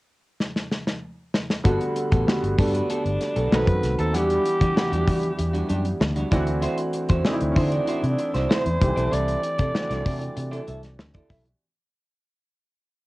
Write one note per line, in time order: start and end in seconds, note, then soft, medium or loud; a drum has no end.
0.40 snare medium
0.56 snare medium
0.72 snare medium
0.87 snare medium
1.34 snare medium
1.50 snare medium
1.64 1.76 G1 medium
1.64 2.13 D3 medium
1.64 2.13 G3 medium
1.64 2.13 A3 medium
1.64 1.82 B3 medium
1.64 2.13 B3 medium
1.64 2.13 F#4 loud
1.64 1.80 F#4 medium
1.64 1.79 A4 medium
1.64 kick loud
1.64 closed hi-hat medium
1.81 muted clean electric guitar stroke soft
1.81 closed hi-hat medium
1.96 muted clean electric guitar stroke soft
1.96 closed hi-hat medium
2.11 2.23 A1 medium
2.11 2.26 B3 soft
2.11 2.26 F#4 medium
2.11 2.25 A4 medium
2.11 kick medium
2.11 closed hi-hat medium
2.27 3.24 D3 medium
2.27 3.24 G3 medium
2.27 3.24 A3 medium
2.27 3.24 B3 medium
2.27 3.24 F#4 medium
2.27 muted clean electric guitar stroke soft
2.27 snare loud
2.43 2.54 G1 medium
2.43 muted clean electric guitar stroke soft
2.43 closed hi-hat soft
2.58 2.81 G2 medium
2.58 2.74 B3 medium
2.58 3.56 D4 medium
2.58 2.73 F#4 medium
2.58 2.73 A4 medium
2.58 kick medium
2.58 open hi-hat medium
2.74 2.88 B3 soft
2.74 2.88 F#4 soft
2.74 2.88 B4 medium
2.74 closed hi-hat medium
2.89 3.07 B3 medium
2.89 3.04 F#4 medium
2.89 3.04 A4 medium
2.89 closed hi-hat medium
3.05 3.17 G1 medium
3.05 muted clean electric guitar stroke soft
3.05 closed hi-hat soft
3.21 muted clean electric guitar stroke soft
3.21 snare soft
3.21 closed hi-hat medium
3.36 3.48 B1 medium
3.36 3.50 B3 soft
3.36 3.50 F#4 soft
3.36 3.50 A4 medium
3.36 closed hi-hat soft
3.51 3.63 B1 medium
3.51 4.01 D#3 medium
3.51 4.02 A3 medium
3.51 4.02 B3 medium
3.51 3.69 C4 medium
3.51 4.02 C4 medium
3.51 3.67 D#4 medium
3.51 4.02 F#4 medium
3.51 3.66 A4 medium
3.51 3.96 B4 loud
3.51 snare loud
3.67 3.79 F#2 medium
3.67 muted clean electric guitar stroke soft
3.67 kick medium
3.67 closed hi-hat soft
3.83 3.94 C2 loud
3.83 muted clean electric guitar stroke soft
3.83 snare soft
3.83 closed hi-hat medium
3.96 4.15 D#2 medium
3.96 4.13 C4 soft
3.96 4.12 D#4 soft
3.96 4.12 A4 medium
3.96 4.17 A4 medium
3.96 4.01 B4 medium
3.96 closed hi-hat soft
4.13 4.37 E2 loud
4.13 4.62 E3 medium
4.13 4.20 F#3 medium
4.13 4.43 G3 medium
4.13 4.62 B3 medium
4.13 4.62 D4 medium
4.13 4.43 D4 medium
4.13 4.43 F#4 medium
4.13 6.02 G4 loud
4.13 4.62 F#5 medium
4.13 closed hi-hat medium
4.20 4.65 G3 medium
4.30 closed hi-hat medium
4.45 muted clean electric guitar stroke soft
4.45 closed hi-hat medium
4.61 4.72 E3 medium
4.61 4.75 G3 medium
4.61 4.75 D4 medium
4.61 4.74 F#4 medium
4.61 kick medium
4.61 closed hi-hat soft
4.76 5.73 E3 medium
4.76 4.83 F#3 soft
4.76 5.73 B3 medium
4.76 5.73 D4 medium
4.76 5.73 F#5 medium
4.76 muted clean electric guitar stroke soft
4.76 snare loud
4.83 5.76 G3 medium
4.91 5.03 E2 medium
4.91 5.06 G3 medium
4.91 5.06 D4 medium
4.91 5.07 F#4 medium
4.91 closed hi-hat soft
5.07 5.30 E3 medium
5.07 5.21 G3 medium
5.07 5.21 D4 medium
5.07 5.21 F#4 medium
5.07 kick medium
5.07 open hi-hat medium
5.22 muted clean electric guitar stroke soft
5.22 closed hi-hat medium
5.38 5.61 E2 medium
5.38 muted clean electric guitar stroke soft
5.38 closed hi-hat medium
5.53 5.68 G3 soft
5.53 5.68 D4 medium
5.53 5.67 F#4 medium
5.53 closed hi-hat soft
5.69 5.92 F#2 medium
5.69 5.87 G3 medium
5.69 5.84 D4 medium
5.69 5.84 G4 medium
5.69 closed hi-hat medium
5.85 muted clean electric guitar stroke soft
5.85 closed hi-hat soft
6.01 6.23 D2 medium
6.01 muted clean electric guitar stroke soft
6.01 snare loud
6.16 6.30 G3 soft
6.16 6.30 D4 soft
6.16 6.30 F#4 medium
6.16 closed hi-hat soft
6.31 6.66 D2 medium
6.31 7.07 E3 medium
6.31 7.07 A3 medium
6.31 7.07 C4 medium
6.31 7.07 D4 medium
6.31 6.49 E4 medium
6.31 6.46 F#4 medium
6.31 7.07 F#4 medium
6.31 6.46 D5 medium
6.31 kick medium
6.31 snare soft
6.31 closed hi-hat medium
6.47 muted clean electric guitar stroke soft
6.47 closed hi-hat soft
6.62 6.80 E4 medium
6.62 6.78 F#4 medium
6.62 6.77 C5 medium
6.62 closed hi-hat medium
6.78 muted clean electric guitar stroke soft
6.78 closed hi-hat medium
6.93 muted clean electric guitar stroke soft
6.93 closed hi-hat medium
7.09 7.21 E2 medium
7.09 7.24 E4 medium
7.09 7.23 F#4 medium
7.09 7.23 C5 medium
7.09 kick medium
7.09 closed hi-hat medium
7.25 8.22 E3 medium
7.25 8.22 A3 medium
7.25 8.22 C4 medium
7.25 8.22 D4 medium
7.25 7.33 D#4 medium
7.25 muted clean electric guitar stroke soft
7.25 snare medium
7.33 8.26 E4 medium
7.40 7.53 D2 medium
7.40 muted clean electric guitar stroke soft
7.40 closed hi-hat soft
7.51 7.60 C#4 medium
7.56 7.79 D3 medium
7.56 8.53 D4 medium
7.56 7.72 E4 medium
7.56 7.71 F#4 medium
7.56 7.72 C5 medium
7.56 kick medium
7.56 open hi-hat medium
7.72 7.86 E4 medium
7.72 7.86 F#4 soft
7.72 7.86 D5 medium
7.72 closed hi-hat medium
7.87 8.05 E4 medium
7.87 8.02 F#4 medium
7.87 8.02 C5 medium
7.87 closed hi-hat medium
8.03 8.15 C3 medium
8.03 muted clean electric guitar stroke soft
8.03 closed hi-hat soft
8.18 muted clean electric guitar stroke soft
8.18 closed hi-hat medium
8.34 8.46 C2 medium
8.34 8.48 E4 soft
8.34 8.48 F#4 soft
8.34 8.48 C5 soft
8.34 snare soft
8.34 closed hi-hat soft
8.49 8.67 E4 medium
8.49 8.64 F#4 medium
8.49 8.64 C5 medium
8.49 9.15 C5 medium
8.49 snare loud
8.65 8.77 E2 medium
8.65 muted clean electric guitar stroke soft
8.65 closed hi-hat soft
8.80 8.93 C2 medium
8.80 8.88 D#3 medium
8.80 9.56 A3 medium
8.80 9.56 C4 medium
8.80 9.56 D4 medium
8.80 9.57 G4 medium
8.80 muted clean electric guitar stroke soft
8.80 kick loud
8.80 closed hi-hat medium
8.88 9.59 E3 medium
8.96 9.08 B1 medium
8.96 9.10 E4 medium
8.96 9.10 A4 medium
8.96 9.10 D5 medium
8.96 closed hi-hat soft
9.11 9.35 C2 loud
9.11 9.40 E4 medium
9.11 9.41 A4 medium
9.11 9.41 D5 medium
9.11 11.00 D5 loud
9.11 closed hi-hat medium
9.28 closed hi-hat medium
9.43 muted clean electric guitar stroke soft
9.43 closed hi-hat medium
9.58 9.70 C3 medium
9.58 9.73 E4 medium
9.58 9.72 A4 medium
9.58 9.72 D5 medium
9.58 kick medium
9.58 closed hi-hat soft
9.74 10.71 E3 medium
9.74 10.71 A3 medium
9.74 10.71 C4 medium
9.74 10.71 D4 medium
9.74 10.71 F#4 medium
9.74 muted clean electric guitar stroke soft
9.74 snare medium
9.89 10.02 C2 medium
9.89 10.03 E4 medium
9.89 10.04 A4 medium
9.89 10.05 D5 medium
9.89 snare soft
9.89 closed hi-hat soft
10.05 10.28 C3 medium
10.05 10.19 E4 medium
10.05 10.19 A4 medium
10.05 10.19 D5 medium
10.05 kick medium
10.05 open hi-hat medium
10.21 muted clean electric guitar stroke soft
10.21 closed hi-hat soft
10.36 10.59 C3 medium
10.36 muted clean electric guitar stroke soft
10.36 closed hi-hat medium
10.52 10.66 E4 medium
10.52 10.67 A4 medium
10.52 10.68 D5 medium
10.52 closed hi-hat soft
10.67 10.99 C2 medium
10.67 10.81 E4 medium
10.67 10.81 A4 medium
10.67 10.82 E5 medium
10.67 closed hi-hat medium
10.83 muted clean electric guitar stroke soft
10.83 snare soft
10.83 closed hi-hat soft
10.99 11.22 D2 medium
10.99 muted clean electric guitar stroke soft
10.99 snare loud
11.14 11.28 E4 soft
11.14 11.28 A4 medium
11.14 11.28 D5 medium
11.14 kick medium
11.14 closed hi-hat soft
11.29 11.53 B1 medium
11.29 11.47 E4 medium
11.29 11.45 A4 medium
11.29 11.45 E5 medium
11.29 kick loud
11.29 snare soft
11.29 open hi-hat medium
11.45 muted clean electric guitar stroke soft
11.45 closed hi-hat soft